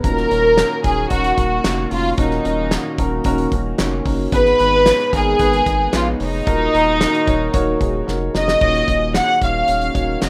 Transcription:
0.04 sub bass D#1, upright piano A#2 C#4 D#4 F#4 A#4, analog synth pad D#3 A#3 C#4 F#4, violin section A#4, kick, closed hi-hat
0.17 snare
0.30 sub bass D#1, upright piano C#4 D#4 F#4 C#5, closed hi-hat
0.57 upright piano C#4 D#4 F#4 C#5, snare, clap, closed hi-hat
0.84 sub bass D#1, upright piano C#4 D#4 F#4 A#4, violin section G#4, kick, closed hi-hat
1.10 sub bass D#1, upright piano C#4 D#4 F#4 A#4, violin section F#4, kick, closed hi-hat
1.24 closed hi-hat
1.37 sub bass D#1, upright piano C#4 D#4 F#4 A#4, violin section F#4, kick, closed hi-hat
1.64 sub bass F1, upright piano C#4 D#4 F#4 A#4, snare, clap, closed hi-hat
1.91 sub bass F1, upright piano C#4 D#4 F#4 A#4, violin section F4, open hi-hat
2.18 sub bass D#1, upright piano A#2 C#4 D#4 F#4 A#4, violin section D#4, kick, closed hi-hat
2.31 snare
2.45 sub bass D#1, upright piano C#4 D#4 F#4 A#4, closed hi-hat
2.71 upright piano C#4 D#4 F#4 A#4, snare, clap, closed hi-hat
2.98 sub bass D#1, upright piano C#4 D#4 F#4 A#4, kick, closed hi-hat
3.24 sub bass D#1, upright piano C#4 D#4 F#4 A#4, kick, closed hi-hat
3.38 closed hi-hat
3.52 sub bass D#1, upright piano C#4 D#4 F#4 A#4, kick, closed hi-hat
3.78 sub bass F1, upright piano C#4 D#4 F#4 C#5, snare, clap, closed hi-hat
4.05 sub bass F#1, upright piano C#4 D#4 F#4 A#4, kick, open hi-hat
4.32 sub bass G#1, upright piano G#2 D#3 B3 D#4 G#4 B4, analog synth pad G#3 B3 D#4, violin section B4, kick, closed hi-hat
4.45 snare
4.60 sub bass G#1, upright piano B3 D#4 G#4 B4, closed hi-hat
4.86 upright piano B3 D#4 G#4 C#5, snare, clap, closed hi-hat
5.00 closed hi-hat
5.13 sub bass G#1, upright piano B3 D#4 G#4 A#4, violin section G#4, kick, closed hi-hat
5.39 sub bass G#1, upright piano B3 D#4 G#4 B4, kick, closed hi-hat
5.53 closed hi-hat
5.66 sub bass G#1, upright piano B3 D#4 G#4 B4, kick, closed hi-hat
5.93 sub bass A#1, upright piano B3 D#4 G#4 C#5, violin section F4, snare, clap, closed hi-hat
6.20 sub bass F1, upright piano B3 D#4 G#4 C#5, violin section D#4, open hi-hat
6.46 sub bass D#1, upright piano A#2 A#3 D#4 F#4 A#4, analog synth pad D#3 F#4 A#4, kick, closed hi-hat
6.74 sub bass D#1, upright piano A#3 D#4 F#4 A#4, closed hi-hat
7.00 upright piano A#3 D#4 F#4 A#4, snare, clap, closed hi-hat
7.15 closed hi-hat
7.27 sub bass D#1, upright piano A#3 D#4 F#4 C#5, kick, closed hi-hat
7.54 sub bass D#1, upright piano A#3 D#4 F#4 C#5, kick, closed hi-hat
7.80 sub bass D#1, upright piano A#3 D#4 F#4 G#4 A#5, kick, closed hi-hat
8.07 sub bass F1, upright piano A#3 D#4 F#4 A#4 F#5, snare
8.34 sub bass F1, upright piano A#3 D#4 F#4 A#4, violin section D#5, snare
8.48 snare
8.60 sub bass D#1, upright piano A#2 D#4 F#4 C#5, analog synth pad D#3 A#3 C#4 F#4, kick, crash
8.74 snare
8.88 sub bass D#1, upright piano D#4 F#4 C#5, kick, closed hi-hat
9.14 upright piano D#4 F#4 G#4, violin section F#5, snare, clap, closed hi-hat
9.42 sub bass D#1, upright piano D#4 F#4 C#5, violin section F5, kick, closed hi-hat
9.68 sub bass D#1, upright piano D#4 F#4 C#5, closed hi-hat
9.81 closed hi-hat
9.94 sub bass D#1, upright piano D#4 F#4 C#5, kick, closed hi-hat
10.22 sub bass F1, upright piano D#4 F#4 C#5, violin section D#5, snare, clap, closed hi-hat

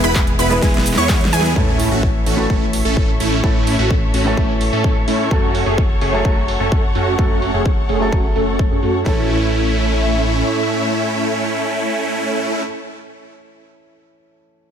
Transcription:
Already playing: grand piano G#3 B3 E4 B4, string section G#3 B3 E4
0.04 analog synth bass E1, supersaw synth B3 E4 B4, synth pluck B5, closed hi-hat, cabasa
0.15 kick, clap, closed hi-hat, cabasa
0.27 closed hi-hat
0.39 analog synth bass E1, supersaw synth B3 E4 B4, synth pluck B5, open hi-hat, cabasa
0.50 grand piano G#3 B3 E4 B4, closed hi-hat, cabasa
0.62 analog synth bass E1, supersaw synth B3 E4 G#4, synth pluck G#5, kick, snare, closed hi-hat, cabasa
0.74 snare, closed hi-hat
0.86 open hi-hat, cabasa
0.94 analog synth bass E2, snare, closed hi-hat
0.98 supersaw synth B3 E4 C#5, synth pluck C#6, cabasa
1.09 kick, snare, clap, closed hi-hat, cabasa
1.21 closed hi-hat
1.25 snare
1.33 analog synth bass E2, supersaw synth B3 E4 G#4, synth pluck G#5, open hi-hat, cabasa
1.41 snare, closed hi-hat
1.45 cabasa
1.55 analog synth bass A1, grand piano A2 E3 A3 C#4 A4, supersaw synth A3 C#4 E4, string section A4 C#5 E5 C#6, kick, sub drop
1.80 open hi-hat
1.91 analog synth bass A1, supersaw synth A3 C#4 F#4
2.03 kick
2.26 analog synth bass A1, supersaw synth A3 C#4 F#4, open hi-hat
2.37 grand piano A2 E3 A3 C#4 A4
2.50 analog synth bass A1, supersaw synth A3 C#4 E4, kick
2.73 open hi-hat
2.85 analog synth bass A1, supersaw synth A3 C#4 A4
2.97 kick
3.20 analog synth bass A1, supersaw synth A3 C#4 E4, open hi-hat
3.42 analog synth bass A1, grand piano A2 E3 A3 C#4 A4, supersaw synth C#4 E4, kick
3.67 open hi-hat
3.79 analog synth bass A1, supersaw synth A3 C#4 F#4
3.91 kick
4.14 analog synth bass A1, supersaw synth A3 C#4 F#4, open hi-hat
4.24 grand piano A2 E3 A3 C#4 A4
4.37 analog synth bass A1, supersaw synth A3 E4, kick
4.61 open hi-hat
4.73 analog synth bass A2, supersaw synth A3 C#4 A4
4.84 kick
5.08 analog synth bass A2, supersaw synth A3 C#4 E4, open hi-hat
5.30 analog synth bass F#1, grand piano F#3 A3 C#4 A4, supersaw synth A3 C#4 F#4, string section F#5, kick
5.55 open hi-hat
5.66 analog synth bass F#1, supersaw synth A3 C#4 G#4
5.78 kick
6.01 analog synth bass F#1, supersaw synth A3 C#4 G#4, open hi-hat
6.12 grand piano F#3 A3 C#4 A4
6.25 analog synth bass F#1, supersaw synth A3 C#4 F#4, kick
6.48 open hi-hat
6.60 analog synth bass F#1, supersaw synth A3 C#4 A4
6.72 kick
6.95 analog synth bass F#1, supersaw synth A3 C#4 F#4, open hi-hat
7.17 analog synth bass F#1, grand piano F#3 A3 C#4 A4, supersaw synth A3 C#4 F#4, kick
7.42 open hi-hat
7.54 analog synth bass F#1, supersaw synth A3 C#4 G#4
7.66 kick
7.89 analog synth bass F#1, supersaw synth A3 C#4 G#4, open hi-hat
8.00 grand piano F#3 A3 C#4 A4
8.12 analog synth bass F#1, supersaw synth A3 C#4 F#4, kick
8.36 analog synth bass F#1, supersaw synth A3 C#4 A4, open hi-hat
8.59 kick
8.71 analog synth bass F#2, supersaw synth A3 C#4 G#4
8.83 analog synth bass F#2, supersaw synth A3 C#4 F#4, open hi-hat
9.04 analog synth bass A1, string section A2 A3 E4 C#5 E5, grand piano E3 A3 C#4 A4, supersaw synth A3 C#4 E4, kick

